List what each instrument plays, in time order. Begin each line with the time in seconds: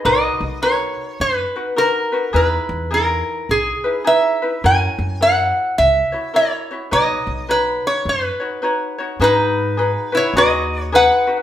0.05 upright bass B1, ukulele D#4 F#4 A#4 B4, resonator guitar played with a steel bar D#5
0.41 upright bass B1
0.62 ukulele D#4 F#4 A#4 B4, resonator guitar played with a steel bar C#5
1.20 upright bass F#2, resonator guitar played with a steel bar B4
1.56 ukulele D#4 F#4 B4
1.76 ukulele D#4 F#4 A#4 B4, resonator guitar played with a steel bar A#4
2.12 ukulele D#4 F#4 B4
2.33 upright bass E2, ukulele D#4 E4 G#4 B4, resonator guitar played with a steel bar B4
2.69 upright bass E2
2.91 ukulele D#4 E4 G#4, resonator guitar played with a steel bar A#4
3.49 upright bass B1, resonator guitar played with a steel bar G#4
3.84 ukulele D#4 E4 B4
4.04 ukulele D#4 E4 G#4 B4, resonator guitar played with a steel bar E5
4.42 ukulele D#4 E4 B4
4.64 upright bass F#2, ukulele E4 F#4 A#4 C#5, resonator guitar played with a steel bar G#5
4.99 upright bass F#2
5.21 ukulele E4 F#4 A#4 C#5, resonator guitar played with a steel bar F#5
5.78 upright bass C#2, resonator guitar played with a steel bar E5
6.12 ukulele E4 F#4 C#5
6.34 ukulele E4 F#4 A#4 C#5, resonator guitar played with a steel bar C#5
6.71 ukulele E4 F#4 C#5
6.91 upright bass B1, ukulele D#4 F#4 B4 C#5, resonator guitar played with a steel bar D#5
7.27 upright bass B1
7.49 ukulele D#4 F#4 B4 C#5, resonator guitar played with a steel bar B4
7.87 resonator guitar played with a steel bar C#5
8.05 upright bass F#2, resonator guitar played with a steel bar B4
8.40 ukulele D#4 F#4 C#5
8.62 ukulele D#4 F#4 B4 C#5
8.98 ukulele D#4 F#4 C#5
9.20 upright bass G#2, ukulele D#4 F#4 G#4 B4, resonator guitar played with a steel bar D#4
9.24 resonator guitar played with a steel bar B4
9.77 ukulele D#4 F#4 G#4 B4
10.12 ukulele D#4 F#4 B4, resonator guitar played with a steel bar E4
10.17 resonator guitar played with a steel bar C#5
10.34 upright bass D#2, ukulele D#4 G#4, resonator guitar played with a steel bar F#4
10.38 ukulele F#4 B4, resonator guitar played with a steel bar D#5
10.82 resonator guitar played with a steel bar C#5
10.92 ukulele D#4 F#4 G#4 B4, resonator guitar played with a steel bar B4 F#5
11.27 ukulele D#4 F#4 B4